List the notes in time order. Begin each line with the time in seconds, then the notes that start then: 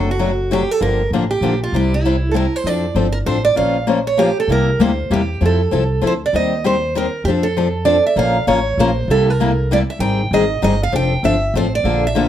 Already playing: F#1
0.11 F#4
0.19 C3 F#3 A3 D4 F#4
0.51 C3 F#3 A3 D4 F#4 G4
0.71 A4
0.81 G1 D3 F3 A#3 D4 G4 A#4
1.10 A1 D3 F3 A#3 D4
1.15 G4
1.31 G4
1.41 A#1 D3 F3 A#3 D4 G4
1.64 F4
1.72 C2 C3 G3 C4 E4 G4
1.94 E4
2.05 C3 G3 C4 E4 G4
2.31 C3 G3 C4 E4 G4 A4
2.36 A#4
2.56 C5
2.64 F2 F3 C4 D4 A4 D5
2.95 G1 F3 C4 D4 A4
3.12 A#4
3.26 A1 F3 C4 D4 A4 C5
3.45 D5
3.55 A#1 F3 A#3 C#4 F4 C5 F5
3.87 F3 A#3 C#4 F4 C5
4.07 C#5
4.17 F3 A#3 C#4 F4 G4 C5
4.40 A4
4.48 C2 C3 G3 A#3 E4 G4
4.52 A#4
4.79 D2 C3 G3 A#3 E4 G4 C5
5.10 E2 C3 G3 A#3 E4 G4
5.41 F2 F3 C4 E4 A4
5.46 A4
5.71 C2 F3 C4 E4 A4
6.02 D2 F3 C4 E4 A4
6.07 C5
6.26 D5
6.33 D#2 D#3 G3 C4 G4 C5 D#5
6.64 D#3 G3 C4 G4 C5
6.95 D#3 G3 C4 G4 A#4 C5
7.24 F2 F3 C4 G4
7.28 D4 A4
7.43 A4
7.57 F3 C4 D4 A4
7.85 F3 C4 D4 A4 D5
8.06 E5
8.16 A#1 F3 A#3 C#4 F4 A#4 F5
8.47 A1 F3 A#3 C#4 F4 A#4 C#5
8.77 A#1 F3 A#3 C#4 F4 A#4 C5
9.08 C2 C3 G3 A#3 E4 G4 A4
9.30 A#4
9.40 C3 G3 A#3 E4 G4
9.71 C3 G3 A#3 E4 G4 D5
9.90 E5
9.99 G#1 D#3 G3 C4 D#4 G#4 G5
10.31 G#1 D#3 G3 C4 D#4 G#4 D#5
10.62 G1 D#3 G3 C4 D#4 G#4 D#5
10.83 F5
10.92 F1 F3 C4 D4 A4 G5
11.23 G1 F3 C4 D4 A4 E5
11.54 A1 F3 C4 D4 A4 C5
11.75 D5
11.84 A#1 D3 F3 A#3 D4 A4
12.07 E5
12.15 D3 F3 A#3 D4 A4